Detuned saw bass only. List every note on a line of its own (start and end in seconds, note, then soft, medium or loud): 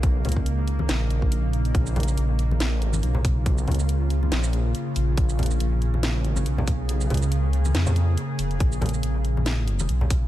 0.00 0.23 B1 medium
0.25 0.87 C#2 medium
0.89 1.73 A#1 loud
1.75 2.16 A#1 loud
2.17 2.76 A#1 medium
2.76 3.02 A1 medium
3.03 3.66 B1 medium
3.68 4.30 C#2 medium
4.32 4.73 A#1 loud
4.96 5.16 A#1 medium
5.17 5.59 A#1 loud
5.60 6.20 A#1 loud
6.20 6.45 A1 loud
6.46 7.09 B1 medium
7.10 7.73 C#2 medium
7.75 8.16 F2 loud
8.39 8.59 F1 medium
8.60 9.02 A#1 loud
9.03 9.87 A#1 medium
9.89 10.28 B1 medium